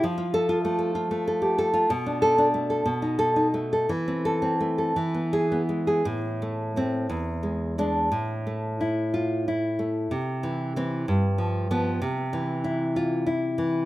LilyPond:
\new Staff \with { instrumentName = "Nylon-string guitar" } { \time 6/8 \key a \minor \tempo 4. = 62 << { r8 a'8 r2 | r8 a'8 r4 a'8 r8 | r8 a'8 r4 gis'8 r8 | r4 c'8 r4 d'8 |
r4. f'8 r4 | r4 c'8 r4 b8 | r4. f'8 r4 | } \\ { f16 f'8 f'16 a16 a'16 f'16 a16 a'16 g'16 a'16 f'16 | b,16 d'8 d'16 a16 a'16 b,16 dis'8 dis'16 a16 a'16 | e16 c'8 c'16 a16 a'16 e16 b8 b16 gis16 gis'16 | a,8 a8 a8 e,8 gis8 gis8 |
a,8 a8 e'4 e'8 a8 | c8 e8 e8 g,8 f8 f8 | c8 e8 e'4 e'8 e8 | } >> }